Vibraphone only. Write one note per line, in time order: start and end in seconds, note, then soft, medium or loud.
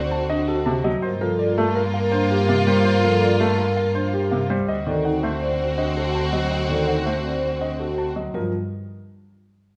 0.00 0.17 C5 medium
0.30 0.53 D4 medium
0.48 0.71 F#4 medium
1.21 1.45 A4 medium
1.39 1.63 F4 medium
1.76 2.00 A#4 medium
2.12 2.36 D4 medium
2.31 2.54 G4 medium
3.04 3.28 A4 medium
3.22 3.46 F4 medium
3.59 3.82 A#4 medium
3.95 4.19 D4 medium
4.14 4.37 G4 medium
4.87 5.10 A4 medium
5.05 5.29 D#4 medium
5.42 5.65 C5 medium
5.78 6.02 D4 medium
5.96 6.20 F#4 medium
6.70 6.93 A4 medium
6.88 7.12 D#4 medium
7.24 7.48 C5 medium
7.61 7.85 D4 medium
7.79 8.03 F#4 medium
8.34 8.51 F4 medium